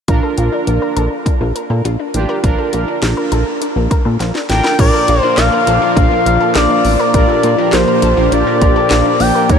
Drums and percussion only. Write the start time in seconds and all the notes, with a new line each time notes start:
0.08 kick, closed hi-hat
0.38 closed hi-hat
0.67 closed hi-hat
0.97 closed hi-hat
1.26 kick, closed hi-hat
1.56 closed hi-hat
1.85 closed hi-hat
2.14 closed hi-hat
2.44 kick, closed hi-hat
2.73 closed hi-hat
3.03 snare, closed hi-hat
3.32 closed hi-hat
3.62 closed hi-hat
3.91 kick, closed hi-hat
4.20 snare, closed hi-hat
4.35 snare
4.50 snare, closed hi-hat
4.64 snare
4.79 kick, closed hi-hat, crash
5.08 closed hi-hat
5.38 snare, clap, closed hi-hat
5.67 closed hi-hat
5.97 kick, closed hi-hat
6.26 closed hi-hat
6.56 snare, clap, closed hi-hat
6.85 open hi-hat
7.14 kick, closed hi-hat
7.43 closed hi-hat
7.73 snare, clap, closed hi-hat
8.02 closed hi-hat
8.32 closed hi-hat
8.62 kick, closed hi-hat
8.91 snare, clap, closed hi-hat
9.20 open hi-hat
9.49 kick, closed hi-hat